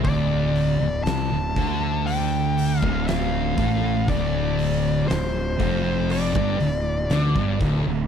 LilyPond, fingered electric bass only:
\new Staff \with { instrumentName = "Fingered electric bass" } { \clef bass \time 4/4 \key d \minor \tempo 4 = 60 d,,8. d,,16 c,16 d,,16 d,4~ d,16 d,,8. a,,8 | d,,4 d,,8 f,,8. g,,16 d,,8 d,16 g,,16 d,,16 d,,16 | }